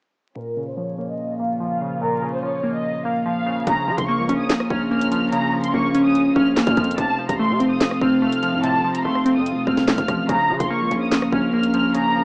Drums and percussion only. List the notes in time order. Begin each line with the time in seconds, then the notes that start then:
3.67 kick, closed hi-hat
3.98 kick, closed hi-hat
4.29 closed hi-hat
4.50 snare, clap, closed hi-hat
4.60 cross-stick
4.70 kick
5.01 closed hi-hat
5.12 closed hi-hat
5.32 closed hi-hat
5.64 closed hi-hat
5.95 closed hi-hat
6.15 closed hi-hat
6.36 kick
6.57 snare, clap
6.67 kick, closed hi-hat
6.77 kick, closed hi-hat, open hi-hat
6.84 closed hi-hat
6.91 closed hi-hat
6.98 kick, closed hi-hat
7.29 kick, closed hi-hat
7.60 closed hi-hat
7.81 snare, clap, closed hi-hat
7.91 cross-stick
8.01 kick
8.32 closed hi-hat
8.43 closed hi-hat
8.64 closed hi-hat
8.95 closed hi-hat
9.15 cross-stick
9.26 closed hi-hat
9.46 closed hi-hat
9.67 kick
9.77 snare
9.88 snare, clap
9.98 kick, closed hi-hat
10.08 kick, cross-stick, closed hi-hat
10.29 kick, closed hi-hat
10.60 kick, closed hi-hat
10.91 closed hi-hat
11.12 snare, clap, closed hi-hat
11.22 cross-stick
11.32 kick
11.63 closed hi-hat
11.74 closed hi-hat
11.95 closed hi-hat